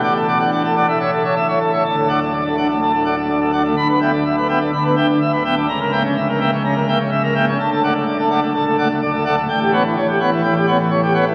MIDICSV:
0, 0, Header, 1, 2, 480
1, 0, Start_track
1, 0, Key_signature, 2, "major"
1, 0, Tempo, 481541
1, 1846, Time_signature, 4, 2, 24, 8
1, 6144, Tempo, 474684
1, 11385, End_track
2, 0, Start_track
2, 0, Title_t, "Pipe organ"
2, 0, Program_c, 0, 19
2, 0, Note_on_c, 0, 33, 92
2, 0, Note_on_c, 0, 45, 85
2, 35, Note_on_c, 0, 74, 66
2, 35, Note_on_c, 0, 78, 74
2, 135, Note_off_c, 0, 74, 0
2, 135, Note_off_c, 0, 78, 0
2, 158, Note_on_c, 0, 69, 72
2, 263, Note_off_c, 0, 69, 0
2, 282, Note_on_c, 0, 74, 66
2, 282, Note_on_c, 0, 78, 68
2, 377, Note_off_c, 0, 78, 0
2, 381, Note_off_c, 0, 74, 0
2, 397, Note_on_c, 0, 78, 73
2, 400, Note_on_c, 0, 62, 71
2, 503, Note_off_c, 0, 78, 0
2, 521, Note_on_c, 0, 74, 60
2, 523, Note_on_c, 0, 78, 69
2, 615, Note_off_c, 0, 62, 0
2, 622, Note_off_c, 0, 74, 0
2, 623, Note_off_c, 0, 78, 0
2, 643, Note_on_c, 0, 69, 69
2, 749, Note_off_c, 0, 69, 0
2, 760, Note_on_c, 0, 74, 60
2, 762, Note_on_c, 0, 78, 71
2, 859, Note_off_c, 0, 33, 0
2, 859, Note_off_c, 0, 45, 0
2, 862, Note_off_c, 0, 74, 0
2, 864, Note_off_c, 0, 78, 0
2, 879, Note_on_c, 0, 33, 91
2, 879, Note_on_c, 0, 45, 82
2, 881, Note_on_c, 0, 76, 106
2, 978, Note_off_c, 0, 76, 0
2, 998, Note_on_c, 0, 76, 72
2, 1000, Note_on_c, 0, 73, 64
2, 1102, Note_off_c, 0, 76, 0
2, 1103, Note_off_c, 0, 73, 0
2, 1119, Note_on_c, 0, 69, 68
2, 1228, Note_off_c, 0, 69, 0
2, 1238, Note_on_c, 0, 73, 59
2, 1239, Note_on_c, 0, 76, 70
2, 1337, Note_off_c, 0, 76, 0
2, 1342, Note_off_c, 0, 73, 0
2, 1356, Note_on_c, 0, 76, 72
2, 1459, Note_off_c, 0, 76, 0
2, 1479, Note_on_c, 0, 76, 73
2, 1480, Note_on_c, 0, 73, 69
2, 1584, Note_off_c, 0, 73, 0
2, 1584, Note_off_c, 0, 76, 0
2, 1595, Note_on_c, 0, 69, 68
2, 1707, Note_off_c, 0, 69, 0
2, 1722, Note_on_c, 0, 73, 60
2, 1722, Note_on_c, 0, 76, 73
2, 1817, Note_off_c, 0, 33, 0
2, 1817, Note_off_c, 0, 45, 0
2, 1826, Note_off_c, 0, 73, 0
2, 1826, Note_off_c, 0, 76, 0
2, 1838, Note_on_c, 0, 38, 90
2, 1839, Note_on_c, 0, 26, 88
2, 1840, Note_on_c, 0, 81, 110
2, 1950, Note_off_c, 0, 81, 0
2, 1958, Note_on_c, 0, 69, 68
2, 2069, Note_off_c, 0, 69, 0
2, 2081, Note_on_c, 0, 74, 71
2, 2083, Note_on_c, 0, 62, 71
2, 2083, Note_on_c, 0, 78, 72
2, 2186, Note_off_c, 0, 74, 0
2, 2187, Note_off_c, 0, 78, 0
2, 2192, Note_off_c, 0, 62, 0
2, 2205, Note_on_c, 0, 57, 72
2, 2313, Note_off_c, 0, 57, 0
2, 2322, Note_on_c, 0, 74, 76
2, 2431, Note_off_c, 0, 74, 0
2, 2446, Note_on_c, 0, 69, 67
2, 2552, Note_off_c, 0, 69, 0
2, 2561, Note_on_c, 0, 62, 64
2, 2562, Note_on_c, 0, 74, 62
2, 2563, Note_on_c, 0, 78, 70
2, 2665, Note_off_c, 0, 74, 0
2, 2665, Note_off_c, 0, 78, 0
2, 2669, Note_off_c, 0, 62, 0
2, 2684, Note_on_c, 0, 57, 71
2, 2791, Note_off_c, 0, 57, 0
2, 2802, Note_on_c, 0, 81, 82
2, 2803, Note_on_c, 0, 45, 74
2, 2908, Note_off_c, 0, 81, 0
2, 2909, Note_off_c, 0, 45, 0
2, 2923, Note_on_c, 0, 69, 68
2, 3029, Note_off_c, 0, 69, 0
2, 3041, Note_on_c, 0, 62, 70
2, 3041, Note_on_c, 0, 78, 71
2, 3044, Note_on_c, 0, 74, 63
2, 3142, Note_off_c, 0, 78, 0
2, 3144, Note_off_c, 0, 74, 0
2, 3147, Note_off_c, 0, 62, 0
2, 3166, Note_on_c, 0, 57, 72
2, 3269, Note_off_c, 0, 57, 0
2, 3281, Note_on_c, 0, 74, 72
2, 3385, Note_off_c, 0, 74, 0
2, 3393, Note_on_c, 0, 69, 73
2, 3500, Note_off_c, 0, 69, 0
2, 3513, Note_on_c, 0, 74, 73
2, 3513, Note_on_c, 0, 78, 77
2, 3514, Note_on_c, 0, 62, 70
2, 3614, Note_off_c, 0, 78, 0
2, 3615, Note_off_c, 0, 74, 0
2, 3621, Note_off_c, 0, 62, 0
2, 3635, Note_on_c, 0, 57, 70
2, 3709, Note_off_c, 0, 38, 0
2, 3710, Note_off_c, 0, 26, 0
2, 3736, Note_off_c, 0, 57, 0
2, 3754, Note_on_c, 0, 26, 97
2, 3755, Note_on_c, 0, 38, 93
2, 3755, Note_on_c, 0, 83, 115
2, 3861, Note_off_c, 0, 83, 0
2, 3877, Note_on_c, 0, 71, 72
2, 3982, Note_off_c, 0, 71, 0
2, 3995, Note_on_c, 0, 59, 75
2, 3996, Note_on_c, 0, 79, 74
2, 3999, Note_on_c, 0, 76, 70
2, 4096, Note_off_c, 0, 79, 0
2, 4098, Note_off_c, 0, 76, 0
2, 4101, Note_off_c, 0, 59, 0
2, 4119, Note_on_c, 0, 62, 68
2, 4223, Note_off_c, 0, 62, 0
2, 4236, Note_on_c, 0, 76, 70
2, 4341, Note_off_c, 0, 76, 0
2, 4354, Note_on_c, 0, 71, 62
2, 4459, Note_off_c, 0, 71, 0
2, 4471, Note_on_c, 0, 76, 64
2, 4471, Note_on_c, 0, 79, 70
2, 4473, Note_on_c, 0, 59, 70
2, 4572, Note_off_c, 0, 76, 0
2, 4572, Note_off_c, 0, 79, 0
2, 4578, Note_off_c, 0, 59, 0
2, 4589, Note_on_c, 0, 62, 68
2, 4691, Note_off_c, 0, 26, 0
2, 4691, Note_off_c, 0, 38, 0
2, 4696, Note_off_c, 0, 62, 0
2, 4711, Note_on_c, 0, 26, 77
2, 4711, Note_on_c, 0, 38, 80
2, 4711, Note_on_c, 0, 83, 80
2, 4817, Note_off_c, 0, 83, 0
2, 4832, Note_on_c, 0, 59, 71
2, 4834, Note_on_c, 0, 71, 67
2, 4938, Note_off_c, 0, 59, 0
2, 4939, Note_off_c, 0, 71, 0
2, 4947, Note_on_c, 0, 76, 63
2, 4949, Note_on_c, 0, 79, 69
2, 4950, Note_on_c, 0, 50, 66
2, 5050, Note_off_c, 0, 76, 0
2, 5051, Note_off_c, 0, 79, 0
2, 5056, Note_off_c, 0, 50, 0
2, 5072, Note_on_c, 0, 62, 69
2, 5177, Note_off_c, 0, 62, 0
2, 5189, Note_on_c, 0, 76, 72
2, 5295, Note_off_c, 0, 76, 0
2, 5308, Note_on_c, 0, 71, 71
2, 5414, Note_off_c, 0, 71, 0
2, 5430, Note_on_c, 0, 59, 73
2, 5430, Note_on_c, 0, 79, 76
2, 5431, Note_on_c, 0, 76, 70
2, 5530, Note_off_c, 0, 76, 0
2, 5530, Note_off_c, 0, 79, 0
2, 5535, Note_off_c, 0, 59, 0
2, 5544, Note_on_c, 0, 62, 72
2, 5637, Note_off_c, 0, 26, 0
2, 5637, Note_off_c, 0, 38, 0
2, 5646, Note_off_c, 0, 62, 0
2, 5665, Note_on_c, 0, 82, 120
2, 5667, Note_on_c, 0, 25, 94
2, 5669, Note_on_c, 0, 37, 97
2, 5771, Note_off_c, 0, 82, 0
2, 5786, Note_on_c, 0, 70, 72
2, 5892, Note_off_c, 0, 70, 0
2, 5903, Note_on_c, 0, 76, 74
2, 5905, Note_on_c, 0, 58, 68
2, 5907, Note_on_c, 0, 79, 77
2, 6005, Note_off_c, 0, 76, 0
2, 6007, Note_off_c, 0, 79, 0
2, 6011, Note_off_c, 0, 58, 0
2, 6024, Note_on_c, 0, 61, 71
2, 6130, Note_off_c, 0, 61, 0
2, 6147, Note_on_c, 0, 76, 78
2, 6253, Note_off_c, 0, 76, 0
2, 6267, Note_on_c, 0, 70, 64
2, 6373, Note_off_c, 0, 70, 0
2, 6386, Note_on_c, 0, 58, 69
2, 6386, Note_on_c, 0, 76, 71
2, 6387, Note_on_c, 0, 79, 74
2, 6487, Note_off_c, 0, 76, 0
2, 6487, Note_off_c, 0, 79, 0
2, 6492, Note_off_c, 0, 58, 0
2, 6511, Note_on_c, 0, 61, 76
2, 6615, Note_off_c, 0, 61, 0
2, 6626, Note_on_c, 0, 82, 82
2, 6627, Note_on_c, 0, 49, 73
2, 6732, Note_off_c, 0, 82, 0
2, 6733, Note_off_c, 0, 49, 0
2, 6746, Note_on_c, 0, 70, 70
2, 6852, Note_off_c, 0, 70, 0
2, 6865, Note_on_c, 0, 58, 66
2, 6868, Note_on_c, 0, 76, 68
2, 6870, Note_on_c, 0, 79, 69
2, 6968, Note_off_c, 0, 76, 0
2, 6969, Note_off_c, 0, 79, 0
2, 6972, Note_off_c, 0, 58, 0
2, 6982, Note_on_c, 0, 61, 76
2, 7090, Note_off_c, 0, 61, 0
2, 7108, Note_on_c, 0, 76, 77
2, 7214, Note_off_c, 0, 76, 0
2, 7226, Note_on_c, 0, 70, 75
2, 7333, Note_off_c, 0, 70, 0
2, 7344, Note_on_c, 0, 58, 76
2, 7345, Note_on_c, 0, 76, 76
2, 7345, Note_on_c, 0, 79, 84
2, 7448, Note_off_c, 0, 76, 0
2, 7448, Note_off_c, 0, 79, 0
2, 7452, Note_off_c, 0, 58, 0
2, 7473, Note_on_c, 0, 61, 81
2, 7547, Note_off_c, 0, 25, 0
2, 7548, Note_off_c, 0, 37, 0
2, 7572, Note_off_c, 0, 61, 0
2, 7588, Note_on_c, 0, 81, 124
2, 7589, Note_on_c, 0, 38, 97
2, 7592, Note_on_c, 0, 26, 94
2, 7694, Note_off_c, 0, 81, 0
2, 7712, Note_on_c, 0, 69, 79
2, 7816, Note_off_c, 0, 69, 0
2, 7836, Note_on_c, 0, 74, 71
2, 7836, Note_on_c, 0, 78, 81
2, 7837, Note_on_c, 0, 57, 76
2, 7933, Note_off_c, 0, 57, 0
2, 7933, Note_off_c, 0, 74, 0
2, 7933, Note_off_c, 0, 78, 0
2, 7953, Note_on_c, 0, 57, 71
2, 8056, Note_off_c, 0, 57, 0
2, 8070, Note_on_c, 0, 74, 76
2, 8174, Note_off_c, 0, 74, 0
2, 8192, Note_on_c, 0, 69, 70
2, 8295, Note_off_c, 0, 69, 0
2, 8307, Note_on_c, 0, 78, 77
2, 8308, Note_on_c, 0, 57, 68
2, 8308, Note_on_c, 0, 74, 70
2, 8406, Note_off_c, 0, 57, 0
2, 8407, Note_off_c, 0, 78, 0
2, 8408, Note_off_c, 0, 74, 0
2, 8426, Note_on_c, 0, 57, 77
2, 8531, Note_off_c, 0, 57, 0
2, 8549, Note_on_c, 0, 45, 78
2, 8549, Note_on_c, 0, 81, 85
2, 8653, Note_off_c, 0, 45, 0
2, 8653, Note_off_c, 0, 81, 0
2, 8668, Note_on_c, 0, 69, 74
2, 8772, Note_off_c, 0, 69, 0
2, 8791, Note_on_c, 0, 57, 76
2, 8792, Note_on_c, 0, 74, 69
2, 8793, Note_on_c, 0, 78, 76
2, 8890, Note_off_c, 0, 57, 0
2, 8890, Note_off_c, 0, 74, 0
2, 8891, Note_off_c, 0, 78, 0
2, 8911, Note_on_c, 0, 57, 80
2, 9015, Note_off_c, 0, 57, 0
2, 9030, Note_on_c, 0, 74, 82
2, 9134, Note_off_c, 0, 74, 0
2, 9149, Note_on_c, 0, 69, 83
2, 9254, Note_off_c, 0, 69, 0
2, 9266, Note_on_c, 0, 57, 73
2, 9266, Note_on_c, 0, 74, 80
2, 9268, Note_on_c, 0, 78, 86
2, 9367, Note_off_c, 0, 74, 0
2, 9368, Note_off_c, 0, 78, 0
2, 9369, Note_off_c, 0, 57, 0
2, 9389, Note_on_c, 0, 57, 85
2, 9465, Note_off_c, 0, 38, 0
2, 9466, Note_off_c, 0, 26, 0
2, 9489, Note_off_c, 0, 57, 0
2, 9508, Note_on_c, 0, 33, 95
2, 9508, Note_on_c, 0, 79, 126
2, 9509, Note_on_c, 0, 45, 100
2, 9613, Note_off_c, 0, 79, 0
2, 9628, Note_on_c, 0, 67, 81
2, 9733, Note_off_c, 0, 67, 0
2, 9746, Note_on_c, 0, 59, 77
2, 9747, Note_on_c, 0, 73, 81
2, 9747, Note_on_c, 0, 78, 87
2, 9847, Note_off_c, 0, 73, 0
2, 9847, Note_off_c, 0, 78, 0
2, 9851, Note_off_c, 0, 59, 0
2, 9868, Note_on_c, 0, 52, 76
2, 9972, Note_off_c, 0, 52, 0
2, 9990, Note_on_c, 0, 73, 78
2, 10093, Note_off_c, 0, 73, 0
2, 10107, Note_on_c, 0, 67, 72
2, 10212, Note_off_c, 0, 67, 0
2, 10224, Note_on_c, 0, 59, 70
2, 10225, Note_on_c, 0, 73, 73
2, 10228, Note_on_c, 0, 78, 77
2, 10326, Note_off_c, 0, 73, 0
2, 10327, Note_off_c, 0, 78, 0
2, 10330, Note_off_c, 0, 59, 0
2, 10347, Note_on_c, 0, 52, 80
2, 10441, Note_off_c, 0, 52, 0
2, 10461, Note_on_c, 0, 52, 83
2, 10462, Note_on_c, 0, 79, 92
2, 10569, Note_off_c, 0, 52, 0
2, 10569, Note_off_c, 0, 79, 0
2, 10585, Note_on_c, 0, 67, 83
2, 10691, Note_off_c, 0, 67, 0
2, 10704, Note_on_c, 0, 59, 77
2, 10704, Note_on_c, 0, 73, 76
2, 10704, Note_on_c, 0, 78, 84
2, 10804, Note_off_c, 0, 78, 0
2, 10805, Note_off_c, 0, 73, 0
2, 10810, Note_off_c, 0, 59, 0
2, 10821, Note_on_c, 0, 52, 83
2, 10927, Note_off_c, 0, 52, 0
2, 10937, Note_on_c, 0, 73, 83
2, 11045, Note_off_c, 0, 73, 0
2, 11059, Note_on_c, 0, 67, 88
2, 11167, Note_off_c, 0, 67, 0
2, 11180, Note_on_c, 0, 59, 84
2, 11180, Note_on_c, 0, 78, 96
2, 11181, Note_on_c, 0, 73, 79
2, 11282, Note_off_c, 0, 78, 0
2, 11283, Note_off_c, 0, 73, 0
2, 11287, Note_off_c, 0, 59, 0
2, 11303, Note_on_c, 0, 52, 89
2, 11382, Note_off_c, 0, 33, 0
2, 11383, Note_off_c, 0, 45, 0
2, 11385, Note_off_c, 0, 52, 0
2, 11385, End_track
0, 0, End_of_file